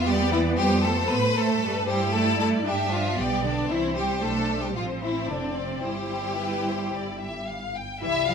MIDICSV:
0, 0, Header, 1, 6, 480
1, 0, Start_track
1, 0, Tempo, 519481
1, 1499, Time_signature, 4, 2, 24, 8
1, 4383, Tempo, 542986
1, 7567, End_track
2, 0, Start_track
2, 0, Title_t, "Violin section"
2, 0, Program_c, 0, 48
2, 71, Note_on_c, 0, 74, 71
2, 547, Note_off_c, 0, 74, 0
2, 548, Note_on_c, 0, 72, 73
2, 1482, Note_off_c, 0, 72, 0
2, 1518, Note_on_c, 0, 71, 75
2, 1735, Note_on_c, 0, 72, 68
2, 1742, Note_off_c, 0, 71, 0
2, 1974, Note_off_c, 0, 72, 0
2, 1974, Note_on_c, 0, 74, 68
2, 2445, Note_off_c, 0, 74, 0
2, 2457, Note_on_c, 0, 76, 65
2, 2932, Note_on_c, 0, 74, 69
2, 2937, Note_off_c, 0, 76, 0
2, 3412, Note_on_c, 0, 72, 66
2, 3417, Note_off_c, 0, 74, 0
2, 4379, Note_off_c, 0, 72, 0
2, 4389, Note_on_c, 0, 72, 51
2, 4842, Note_on_c, 0, 74, 52
2, 4846, Note_off_c, 0, 72, 0
2, 5339, Note_off_c, 0, 74, 0
2, 5341, Note_on_c, 0, 72, 48
2, 5783, Note_off_c, 0, 72, 0
2, 5833, Note_on_c, 0, 71, 57
2, 6058, Note_off_c, 0, 71, 0
2, 6090, Note_on_c, 0, 72, 50
2, 6323, Note_off_c, 0, 72, 0
2, 6324, Note_on_c, 0, 74, 56
2, 6557, Note_on_c, 0, 76, 58
2, 6559, Note_off_c, 0, 74, 0
2, 6790, Note_off_c, 0, 76, 0
2, 6801, Note_on_c, 0, 77, 61
2, 7038, Note_off_c, 0, 77, 0
2, 7049, Note_on_c, 0, 79, 58
2, 7278, Note_on_c, 0, 76, 87
2, 7279, Note_off_c, 0, 79, 0
2, 7492, Note_off_c, 0, 76, 0
2, 7511, Note_on_c, 0, 77, 82
2, 7567, Note_off_c, 0, 77, 0
2, 7567, End_track
3, 0, Start_track
3, 0, Title_t, "Violin section"
3, 0, Program_c, 1, 48
3, 72, Note_on_c, 1, 67, 95
3, 297, Note_on_c, 1, 64, 89
3, 308, Note_off_c, 1, 67, 0
3, 371, Note_off_c, 1, 64, 0
3, 535, Note_on_c, 1, 67, 105
3, 762, Note_on_c, 1, 69, 92
3, 773, Note_off_c, 1, 67, 0
3, 1011, Note_off_c, 1, 69, 0
3, 1020, Note_on_c, 1, 71, 103
3, 1259, Note_off_c, 1, 71, 0
3, 1265, Note_on_c, 1, 69, 93
3, 1736, Note_on_c, 1, 67, 88
3, 1740, Note_off_c, 1, 69, 0
3, 1970, Note_off_c, 1, 67, 0
3, 1976, Note_on_c, 1, 69, 97
3, 2205, Note_off_c, 1, 69, 0
3, 2216, Note_on_c, 1, 69, 90
3, 2290, Note_off_c, 1, 69, 0
3, 2460, Note_on_c, 1, 67, 84
3, 2693, Note_off_c, 1, 67, 0
3, 2704, Note_on_c, 1, 65, 90
3, 2940, Note_off_c, 1, 65, 0
3, 2954, Note_on_c, 1, 67, 87
3, 3187, Note_off_c, 1, 67, 0
3, 3193, Note_on_c, 1, 62, 85
3, 3422, Note_off_c, 1, 62, 0
3, 3423, Note_on_c, 1, 64, 92
3, 3661, Note_off_c, 1, 64, 0
3, 3663, Note_on_c, 1, 67, 77
3, 3897, Note_off_c, 1, 67, 0
3, 3898, Note_on_c, 1, 69, 83
3, 4260, Note_off_c, 1, 69, 0
3, 4275, Note_on_c, 1, 67, 73
3, 4389, Note_off_c, 1, 67, 0
3, 4397, Note_on_c, 1, 65, 78
3, 4468, Note_off_c, 1, 65, 0
3, 4629, Note_on_c, 1, 64, 72
3, 4854, Note_off_c, 1, 64, 0
3, 4865, Note_on_c, 1, 62, 66
3, 5094, Note_on_c, 1, 60, 63
3, 5102, Note_off_c, 1, 62, 0
3, 5343, Note_off_c, 1, 60, 0
3, 5347, Note_on_c, 1, 67, 76
3, 6795, Note_off_c, 1, 67, 0
3, 7275, Note_on_c, 1, 55, 66
3, 7280, Note_on_c, 1, 64, 70
3, 7567, Note_off_c, 1, 55, 0
3, 7567, Note_off_c, 1, 64, 0
3, 7567, End_track
4, 0, Start_track
4, 0, Title_t, "Viola section"
4, 0, Program_c, 2, 48
4, 0, Note_on_c, 2, 59, 88
4, 993, Note_off_c, 2, 59, 0
4, 1026, Note_on_c, 2, 57, 73
4, 1501, Note_off_c, 2, 57, 0
4, 1510, Note_on_c, 2, 55, 68
4, 1584, Note_off_c, 2, 55, 0
4, 1750, Note_on_c, 2, 64, 82
4, 2448, Note_off_c, 2, 64, 0
4, 2461, Note_on_c, 2, 62, 68
4, 2931, Note_on_c, 2, 59, 71
4, 2939, Note_off_c, 2, 62, 0
4, 3407, Note_off_c, 2, 59, 0
4, 3423, Note_on_c, 2, 60, 68
4, 3902, Note_off_c, 2, 60, 0
4, 3905, Note_on_c, 2, 62, 65
4, 4375, Note_off_c, 2, 62, 0
4, 4386, Note_on_c, 2, 60, 66
4, 5327, Note_off_c, 2, 60, 0
4, 5346, Note_on_c, 2, 64, 54
4, 7035, Note_off_c, 2, 64, 0
4, 7268, Note_on_c, 2, 64, 70
4, 7487, Note_off_c, 2, 64, 0
4, 7502, Note_on_c, 2, 65, 69
4, 7567, Note_off_c, 2, 65, 0
4, 7567, End_track
5, 0, Start_track
5, 0, Title_t, "Cello section"
5, 0, Program_c, 3, 48
5, 56, Note_on_c, 3, 55, 79
5, 295, Note_off_c, 3, 55, 0
5, 295, Note_on_c, 3, 52, 77
5, 537, Note_on_c, 3, 55, 87
5, 539, Note_off_c, 3, 52, 0
5, 777, Note_on_c, 3, 57, 78
5, 779, Note_off_c, 3, 55, 0
5, 1016, Note_on_c, 3, 59, 83
5, 1018, Note_off_c, 3, 57, 0
5, 1090, Note_off_c, 3, 59, 0
5, 1253, Note_on_c, 3, 57, 83
5, 1724, Note_off_c, 3, 57, 0
5, 1734, Note_on_c, 3, 55, 76
5, 1969, Note_off_c, 3, 55, 0
5, 1973, Note_on_c, 3, 57, 81
5, 2202, Note_off_c, 3, 57, 0
5, 2213, Note_on_c, 3, 57, 81
5, 2450, Note_off_c, 3, 57, 0
5, 2455, Note_on_c, 3, 55, 66
5, 2690, Note_off_c, 3, 55, 0
5, 2695, Note_on_c, 3, 53, 72
5, 2933, Note_on_c, 3, 55, 72
5, 2936, Note_off_c, 3, 53, 0
5, 3176, Note_off_c, 3, 55, 0
5, 3177, Note_on_c, 3, 50, 70
5, 3419, Note_off_c, 3, 50, 0
5, 3420, Note_on_c, 3, 52, 71
5, 3655, Note_off_c, 3, 52, 0
5, 3666, Note_on_c, 3, 55, 72
5, 3903, Note_off_c, 3, 55, 0
5, 3904, Note_on_c, 3, 57, 74
5, 4263, Note_off_c, 3, 57, 0
5, 4267, Note_on_c, 3, 55, 59
5, 4314, Note_off_c, 3, 55, 0
5, 4387, Note_on_c, 3, 53, 58
5, 4613, Note_off_c, 3, 53, 0
5, 4624, Note_on_c, 3, 52, 62
5, 4856, Note_off_c, 3, 52, 0
5, 4861, Note_on_c, 3, 50, 57
5, 5100, Note_off_c, 3, 50, 0
5, 5106, Note_on_c, 3, 48, 55
5, 5349, Note_off_c, 3, 48, 0
5, 5354, Note_on_c, 3, 55, 59
5, 6799, Note_off_c, 3, 55, 0
5, 7272, Note_on_c, 3, 52, 70
5, 7343, Note_off_c, 3, 52, 0
5, 7500, Note_on_c, 3, 53, 70
5, 7567, Note_off_c, 3, 53, 0
5, 7567, End_track
6, 0, Start_track
6, 0, Title_t, "Double bass section"
6, 0, Program_c, 4, 48
6, 0, Note_on_c, 4, 40, 76
6, 524, Note_off_c, 4, 40, 0
6, 541, Note_on_c, 4, 41, 74
6, 1020, Note_off_c, 4, 41, 0
6, 1030, Note_on_c, 4, 45, 72
6, 1494, Note_off_c, 4, 45, 0
6, 1502, Note_on_c, 4, 43, 73
6, 2909, Note_off_c, 4, 43, 0
6, 2940, Note_on_c, 4, 35, 67
6, 3422, Note_off_c, 4, 35, 0
6, 3428, Note_on_c, 4, 36, 66
6, 3895, Note_off_c, 4, 36, 0
6, 3900, Note_on_c, 4, 35, 58
6, 4373, Note_off_c, 4, 35, 0
6, 4386, Note_on_c, 4, 33, 55
6, 4854, Note_off_c, 4, 33, 0
6, 4854, Note_on_c, 4, 29, 52
6, 5345, Note_off_c, 4, 29, 0
6, 5355, Note_on_c, 4, 31, 50
6, 6301, Note_off_c, 4, 31, 0
6, 6323, Note_on_c, 4, 31, 52
6, 7080, Note_off_c, 4, 31, 0
6, 7277, Note_on_c, 4, 36, 64
6, 7567, Note_off_c, 4, 36, 0
6, 7567, End_track
0, 0, End_of_file